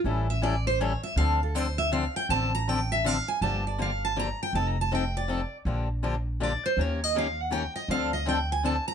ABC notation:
X:1
M:3/4
L:1/16
Q:"Swing" 1/4=161
K:Dm
V:1 name="Steel-string acoustic guitar"
z2 e2 d2 c2 ^c2 e2 | f2 A2 c2 e2 f2 g2 | a2 b2 g2 e2 f2 ^g2 | [K:Gm] a2 d2 f2 a2 b2 g2 |
(3a2 b2 a2 g2 d4- d z | z8 d2 c2 | _d2 e2 f2 ^f2 g2 e2 | f2 e2 g2 _a2 =a2 b2 |]
V:2 name="Steel-string acoustic guitar"
[E,G,^CEA]2 z2 [E,G,CEA] z3 [E,G,CEA] z3 | [D,F,CDA]2 z2 [D,F,CDA] z3 [D,F,CDA] z3 | [D,F,CDA]2 z2 [D,F,CDA] z3 [D,F,CDA] z3 | [K:Gm] [D,F,B,DG]2 z2 [D,F,B,DG] z3 [D,F,B,DG] z3 |
[F,CEA]2 z2 [F,CEA] z3 [F,CEA] z3 | [D,F,B,DG]2 z2 [D,F,B,DG] z3 [D,F,B,DG] z3 | [E,B,_DGB]2 z2 [E,B,DGB] z3 [E,B,DGB] z3 | [D,F,CDA]2 z2 [D,F,CDA] z3 [D,F,CDA] z3 |]
V:3 name="Upright bass" clef=bass
A,,,12 | D,,12 | A,,,12 | [K:Gm] G,,,12 |
F,,,12 | B,,,12 | E,,12 | D,,12 |]